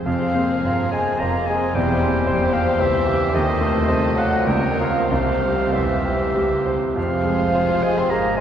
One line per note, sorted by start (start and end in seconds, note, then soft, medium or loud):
0.05 0.61 F1 soft
0.05 0.61 F2 soft
0.05 0.63 F2 soft
0.05 0.94 F3 medium
0.05 0.33 C4 soft
0.05 1.72 G#4 soft
0.05 1.17 G#4 soft
0.05 3.29 C5 soft
0.05 0.61 C5 soft
0.05 0.95 F5 soft
0.05 0.89 F5 medium
0.35 0.65 A#3 soft
0.35 0.82 C4 soft
0.64 1.17 G1 soft
0.64 1.17 G2 soft
0.64 1.75 C4 soft
0.64 1.22 A#4 soft
0.64 1.11 C5 soft
0.92 1.22 G#3 medium
0.92 1.21 G#5 medium
0.92 1.38 G#5 soft
0.92 1.22 G#5 medium
1.19 1.71 F1 medium
1.19 1.72 F2 soft
1.19 1.50 A#3 medium
1.19 1.75 F4 soft
1.19 1.76 G#4 soft
1.19 1.65 C5 soft
1.19 1.48 A#5 medium
1.19 1.47 A#5 medium
1.46 1.74 G#3 medium
1.46 1.77 G#4 soft
1.46 1.76 G#5 soft
1.46 1.76 G#5 medium
1.75 2.24 E1 medium
1.75 2.25 E2 medium
1.75 2.27 E2 medium
1.75 2.55 G3 medium
1.75 2.02 C4 soft
1.75 3.30 G4 soft
1.75 2.26 G4 soft
1.75 2.27 C5 soft
1.75 2.54 G5 medium
1.75 2.55 G5 medium
2.02 2.28 A#3 soft
2.02 2.44 C4 soft
2.27 2.76 F1 medium
2.27 2.76 F2 medium
2.27 2.54 A#3 soft
2.27 3.31 G4 medium
2.27 2.69 C5 medium
2.27 3.85 C5 soft
2.52 2.81 F3 medium
2.52 3.33 C4 medium
2.52 2.81 F5 medium
2.52 2.83 F5 medium
2.52 2.96 G5 soft
2.79 3.29 C#2 medium
2.79 3.30 C#2 medium
2.79 3.33 E3 medium
2.79 3.23 C5 soft
2.79 3.32 E5 medium
2.79 3.34 E5 medium
3.07 3.33 G4 soft
3.33 3.84 D#2 medium
3.33 4.44 D#2 medium
3.33 4.17 D#3 medium
3.33 4.45 C4 soft
3.33 5.10 F4 medium
3.33 4.45 A4 medium
3.33 3.88 C5 soft
3.33 4.17 D#5 medium
3.33 4.20 D#5 medium
3.61 4.05 A3 medium
3.87 4.43 C2 medium
3.87 4.13 A4 soft
3.87 4.35 C5 soft
3.87 4.47 D#5 soft
4.15 4.49 F#3 medium
4.15 4.45 A4 soft
4.15 4.47 F5 soft
4.15 4.49 F#5 medium
4.45 5.06 C#2 medium
4.45 5.08 C#2 medium
4.45 5.06 C#2 medium
4.45 4.80 G3 medium
4.45 5.10 A#3 soft
4.45 5.08 A#4 soft
4.45 5.11 A#4 soft
4.45 5.10 C#5 soft
4.45 4.78 G5 medium
4.79 5.10 F3 medium
4.79 5.08 F4 soft
4.79 5.08 A#4 soft
4.79 5.10 F5 soft
4.79 5.11 F5 soft
5.08 5.69 C2 medium
5.08 5.69 C2 soft
5.08 5.74 F3 medium
5.08 6.72 C4 soft
5.08 8.40 C4 soft
5.08 6.71 G4 soft
5.08 6.63 G4 soft
5.08 6.72 C5 soft
5.08 5.76 F5 medium
5.12 6.31 C2 soft
5.12 5.76 F5 soft
5.44 5.92 G3 soft
5.73 6.30 E1 soft
5.73 6.30 E2 soft
5.73 6.66 E3 medium
5.73 6.23 C5 soft
5.73 6.66 E5 soft
5.73 6.67 E5 soft
6.05 6.54 G5 soft
6.33 6.92 C#2 soft
6.33 6.93 C#2 soft
6.33 6.85 G4 soft
6.67 6.97 C5 soft
6.96 8.06 F1 soft
6.96 8.06 F2 soft
6.96 8.40 F2 soft
6.96 7.85 F3 medium
6.96 8.40 F4 soft
6.96 8.40 G#4 soft
6.96 8.40 C5 soft
6.96 7.85 F5 medium
6.96 7.84 F5 soft
7.25 7.72 G#3 soft
7.55 8.00 C5 soft
7.83 7.99 G#3 medium
7.83 8.26 F5 soft
7.83 7.99 G#5 medium
7.83 8.00 G#5 soft
7.97 8.11 C4 medium
7.97 8.12 C6 soft
8.10 8.40 G#1 soft
8.10 8.40 G#2 soft
8.10 8.39 A#3 medium
8.10 8.40 G#4 soft
8.10 8.38 A#5 medium
8.10 8.37 A#5 medium
8.37 8.40 G#3 medium
8.37 8.40 G#5 medium